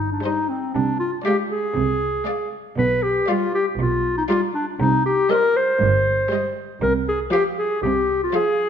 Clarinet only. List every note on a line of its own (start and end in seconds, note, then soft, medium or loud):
0.00 0.11 D#4 medium
0.12 0.26 D4 medium
0.24 0.50 D#4 medium
0.49 0.74 C4 medium
0.74 0.99 D4 medium
0.99 1.11 F4 medium
1.25 1.37 G4 medium
1.49 2.50 G#4 medium
2.78 3.04 B4 medium
3.03 3.30 G4 medium
3.29 3.54 F4 medium
3.55 3.66 G4 medium
3.80 4.17 F4 medium
4.18 4.23 D#4 medium
4.29 4.41 F4 medium
4.55 4.66 D4 medium
4.80 5.05 D#4 medium
5.06 5.32 G4 medium
5.30 5.58 A#4 medium
5.57 6.57 C5 medium
6.82 6.93 A#4 medium
7.08 7.20 G#4 medium
7.32 7.44 G4 medium
7.59 7.82 G#4 medium
7.83 8.20 G4 medium
8.23 8.34 F4 medium
8.35 8.69 G#4 medium